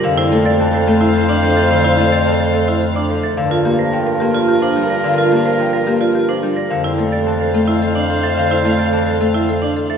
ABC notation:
X:1
M:3/4
L:1/16
Q:1/4=108
K:Dm
V:1 name="Clarinet"
c12- | c8- c3 z | B12- | B8- B3 z |
c12- | c8- c3 z |]
V:2 name="Marimba"
f c A d a c A e A d A e | f c A d a c A e A d A e | f B G c g B G d G c G d | f B G c g B G d G c G d |
f c A d a c A e A d A e | f c A d a c A e A d A e |]
V:3 name="Violin section"
[cf]12- | [cf]8- [cf]3 z | [FB]12- | [FB]8- [FB]3 z |
[cf]12- | [cf]8- [cf]3 z |]
V:4 name="Vibraphone"
z E z A z A z E z D z A | z E z A z A z E z D z A | z F z B z B z F z D z B | z F z B z B z F z D z B |
z E z A z A z E z D z A | z E z A z A z E z D z A |]
V:5 name="Harp" clef=bass
[D,F,]2 A,2 E,2 A,4 F,2 | D,2 A,2 E,2 A,4 F,2 | D,2 B,2 F,2 B,4 G,2 | D,2 B,2 F,2 B,4 G,2 |
D,2 A,2 E,2 A,6 | D,2 A,2 E,2 A,6 |]
V:6 name="Bass clarinet" clef=bass
F,,12- | F,,12 | G,,12- | G,,12 |
F,,12- | F,,12 |]